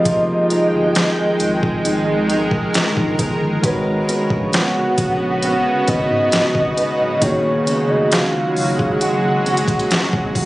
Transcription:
Already playing: sub bass F1, ambient pad D#3 G#3 G5, tine electric piano F3 F4 G4 G#4 A#4 D#5, steel-string acoustic guitar F4, soft synth lead D#5
0.05 steel-string acoustic guitar F3 A#4, kick, closed hi-hat
0.50 steel-string acoustic guitar D#4 G#4 A#4, closed hi-hat
0.73 sub bass G1
0.95 steel-string acoustic guitar G#4, snare, closed hi-hat
1.18 sub bass G#1
1.40 sub bass G#1, ambient pad A#4, closed hi-hat
1.63 kick
1.85 steel-string acoustic guitar D#4, closed hi-hat
2.30 steel-string acoustic guitar D#4 G#4 A#4, closed hi-hat
2.51 kick
2.74 snare, closed hi-hat
2.97 sub bass A#1, kick
3.19 sub bass G1, steel-string acoustic guitar A#4, kick, closed hi-hat
3.61 sub bass G#1, ambient pad C#3 B3 F#4, tine electric piano G#3 F#4 A#4, steel-string acoustic guitar G#3 B4, kick, closed hi-hat
3.66 tine electric piano B4 C#5
4.09 steel-string acoustic guitar C#4 F#4 B4, closed hi-hat
4.30 sub bass A#1, kick
4.53 steel-string acoustic guitar F#4, soft synth lead F#5, snare, closed hi-hat
4.76 sub bass A#1
4.98 sub bass A#1, kick, closed hi-hat
5.42 steel-string acoustic guitar C#4, soft synth lead F#5, closed hi-hat
5.88 sub bass G#1, steel-string acoustic guitar C#4 F#4 B4, soft synth lead D#5, kick, closed hi-hat
6.11 sub bass G#2
6.32 sub bass G#1, snare, closed hi-hat
6.55 sub bass G#1, kick
6.77 steel-string acoustic guitar B4, closed hi-hat
7.00 sub bass D1
7.20 sub bass D#1, tine electric piano D#3 A#3 D#4 F#4, steel-string acoustic guitar D#3 F#4, ambient pad F#3 G#3 F#4, soft synth lead C#5, kick, closed hi-hat
7.25 tine electric piano G#4 C#5
7.67 steel-string acoustic guitar G#3 C#4 F#4, closed hi-hat
7.89 sub bass F1, soft synth lead D#5
8.11 steel-string acoustic guitar C#4, soft synth lead F5, snare, closed hi-hat
8.34 sub bass F#1
8.56 sub bass F#1, open hi-hat
8.79 kick
9.01 steel-string acoustic guitar G#3, soft synth lead F#5, closed hi-hat
9.46 steel-string acoustic guitar G#3 C#4 F#4, closed hi-hat
9.57 closed hi-hat
9.68 kick, closed hi-hat
9.79 closed hi-hat
9.91 snare, closed hi-hat
10.13 sub bass G#1, kick
10.35 sub bass F#1, steel-string acoustic guitar F#4, kick, closed hi-hat, open hi-hat

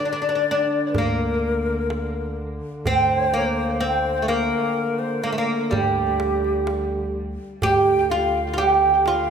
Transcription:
Already playing: duduk D3, ney D5
0.00 darbuka ka
0.05 oud D4
0.13 oud D4
0.22 oud D4
0.29 oud D4
0.35 oud D4
0.51 oud D4
0.94 upright bass D2, ney A#4, darbuka dum
0.98 oud A#3
1.66 darbuka ka
1.90 darbuka tek
2.86 upright bass D2, oud C4, ney C5, darbuka dum
3.34 oud A#3
3.80 oud C4, ney C5, darbuka ka
4.22 oud A3
4.28 oud A#3, ney A#4, darbuka tek
4.77 darbuka ka
4.99 ney C5
5.23 oud A#3, ney A#4, darbuka ka
5.32 oud A3
5.37 oud A#3, ney A#4
5.70 upright bass D2, oud G3, ney G4, darbuka dum
6.20 darbuka tek
6.44 darbuka ka
6.67 darbuka tek
7.62 upright bass D2, duduk D3, oud G4, ney G5, darbuka dum
8.10 oud F4, ney F5
8.54 oud F4
8.58 oud G4, ney G5, darbuka ka
9.06 oud F4, ney F5, darbuka tek

